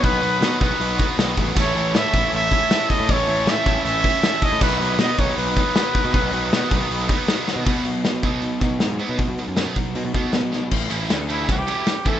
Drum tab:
CC |--------|x-------|--------|x-------|
RD |--------|--------|--------|--------|
HH |oooooooo|-ooooooo|oooooooo|-ooooooo|
SD |--o---o-|--o---o-|--o---o-|--o---o-|
BD |o--o-o-o|o--o-o-o|o--o-o-o|o--o-o-o|

CC |--------|x-------|--------|x-------|
RD |--------|--------|--------|-xxxxxxx|
HH |ooooooo-|-ooooooo|ooooooo-|--------|
SD |--o---oo|--o--oo-|--o---oo|--o---o-|
BD |o--o-o--|o--o-o--|o--o-o--|o---o--o|